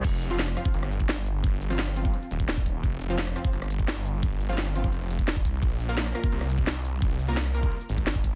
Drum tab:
CC |x---------------|----------------|----------------|----------------|
HH |x-x-x-x-x-x-x-x-|x-x-x-x-x-x-x-x-|x-x-x-x-x-x-x-x-|x-x-x-x-x-x-x-x-|
SH |--x--xx--xx---x-|--x--xx--xx---x-|--x--xx--xx---x-|--x--xx--xx---x-|
SD |----orr--r--o---|----or------o---|----orr--r--o---|----or------o---|
BD |o------o---o----|o------o---o-oo-|o------o---o----|o------o---o-oo-|

CC |----------------|----------------|
HH |x-x-x-x-x-x-x-x-|x-x-x-x-x-x-x-x-|
SH |--x--xx--xx---x-|--x--xx--xx---x-|
SD |----orr--r--o---|----or------o---|
BD |o------o---o----|o------o---o-oo-|